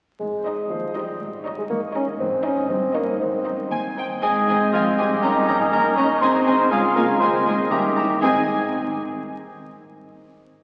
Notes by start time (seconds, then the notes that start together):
0.20 G#1 G#2 G#3
0.37 C4
0.46 D#4 C5 D#5
0.53 D#5
0.70 D#2 F3 C5
0.87 D#5
0.95 G3 D#4 C5 D#5
1.04 C4
1.20 G#1 G#2
1.37 C#4
1.45 D#4 C#5 D#5
1.53 D#5
1.58 G#3
1.70 G#1 G#2 A#3 C#5
1.87 D#5
1.94 C#4 D#4 C#5 D#5
2.03 C#4
2.19 G#1 G#2 C4
2.36 C4
2.44 C#4 D#4 C5 D#5
2.53 D#4 D#5
2.69 G1 G2 C4
2.87 C#4
2.94 A#3 D#4 C#5 D#5
3.04 D#4 D#5
3.21 G#1 G#2 C4
3.38 C4
3.46 D#4 C5 D#5
3.55 D#5
3.71 D#2 C5 G#5
3.89 D#5
3.97 D#4 C5 G5
4.07 C4
4.22 G#1 G#2 G#3 C4 G#4 D#5 G#5
4.48 G#1 C4 D#4 D#5 G#5
4.73 G#1 F3 C4 F4 D#5 F5 G#5
4.98 G#1 G3 C4 D#4 G4 C5 D#5 G5 G#5
5.22 G#1 G#2 A#3 C#4 D#4 D#5 A#5
5.48 G#1 A#3 C#4 D#4 D#5 A#5
5.60 G#3 G#4 G#5
5.72 G#1 A#3 C#4 D#4 A#4 C#5 D#5 A#5
5.96 G#1 C#4 D#4 C#5 D#5 A#5 C#6
6.21 G#1 G#2 G#3 C4 C5 D#5 G#5 C6
6.46 G#1 C4 D#4 C5 D#5 G#5
6.71 C#2 C#3 G#3 C#4 F4 G#4 F5 G#5
6.96 C#2 A#3 C#4 F4 A#4 C#5 F5 G#5 A#5
7.20 D#2 D#3 G#3 C4 C5 D#5 G#5 C6
7.45 D#2 G#3 C4 D#4 G#4 C5 D#5 G#5
7.71 D#2 D#3 G3 A#3 C#4 G4 E5 G5 A#5
7.96 D#2 C#4 E4 C#5 E5 A#5
8.20 G#1 G#2 G#3 C4 D#4 G#4 D#5 G#5
8.24 C5 D#5